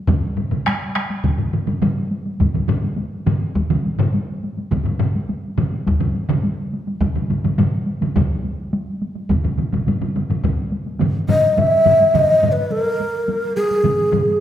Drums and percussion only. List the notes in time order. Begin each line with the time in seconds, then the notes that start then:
0.07 taiko, taiko low-mid, taiko mid, taiko high
0.37 taiko low-mid, taiko mid, taiko high
0.51 taiko low-mid, taiko mid, taiko high
0.66 taiko rim, taiko high
0.95 taiko rim, taiko high
1.10 taiko high
1.24 taiko, taiko low-mid, taiko mid, taiko high
1.38 taiko low-mid, taiko mid
1.53 taiko low-mid, taiko mid
1.67 taiko low-mid, taiko mid, taiko high
1.82 taiko low-mid, taiko mid, taiko high
2.11 taiko high
2.25 taiko high
2.40 taiko, taiko low-mid, taiko mid, taiko high
2.54 taiko low-mid, taiko mid
2.69 taiko low-mid, taiko mid, taiko high
2.83 taiko high
2.98 taiko high
3.26 taiko low-mid, taiko mid, taiko high
3.41 taiko high
3.55 taiko, taiko high
3.70 taiko low-mid, taiko mid
3.85 taiko high
3.99 taiko low-mid, taiko mid
4.14 taiko high
4.43 taiko high
4.57 taiko high
4.71 taiko, taiko low-mid, taiko mid, taiko high
4.85 taiko low-mid, taiko mid
4.99 taiko low-mid, taiko mid, taiko high
5.15 taiko high
5.29 taiko high
5.58 taiko low-mid, taiko mid, taiko high
5.73 taiko high
5.87 taiko, taiko high
6.01 taiko low-mid, taiko mid
6.15 taiko high
6.29 taiko low-mid, taiko mid
6.43 taiko high
6.73 taiko high
6.87 taiko high
7.01 taiko, taiko low-mid, taiko mid, taiko high
7.15 taiko low-mid, taiko mid
7.30 taiko low-mid, taiko mid, taiko high
7.44 taiko low-mid, taiko mid, taiko high
7.58 taiko low-mid, taiko mid, taiko high
7.87 taiko high
8.01 taiko low-mid, taiko mid, taiko high
8.16 taiko, taiko low-mid, taiko mid, taiko high
8.44 taiko high
8.73 taiko high
9.02 taiko high
9.16 taiko high
9.30 taiko, taiko low-mid, taiko mid, taiko high
9.44 taiko low-mid, taiko mid
9.58 taiko low-mid, taiko mid, taiko high
9.73 taiko low-mid, taiko mid, taiko high
9.87 taiko low-mid, taiko mid, taiko high
10.01 taiko low-mid, taiko mid
10.16 taiko low-mid, taiko mid, taiko high
10.30 taiko low-mid, taiko mid, taiko high
10.44 taiko, taiko low-mid, taiko mid, taiko high
10.72 taiko high
10.86 taiko high
11.00 taiko low-mid, taiko mid, taiko high
11.29 taiko low-mid, taiko mid, taiko high
11.43 taiko high
11.58 taiko low-mid, taiko mid, taiko high
11.86 taiko low-mid, taiko mid, taiko high
12.00 taiko high
12.14 taiko low-mid, taiko mid, taiko high
12.42 taiko low-mid, taiko mid, taiko high
12.57 taiko high
12.71 taiko high
13.00 taiko high
13.28 taiko high
13.56 taiko high
13.71 taiko high
13.84 taiko low-mid, taiko mid, taiko high
14.12 taiko low-mid, taiko mid, taiko high
14.28 taiko high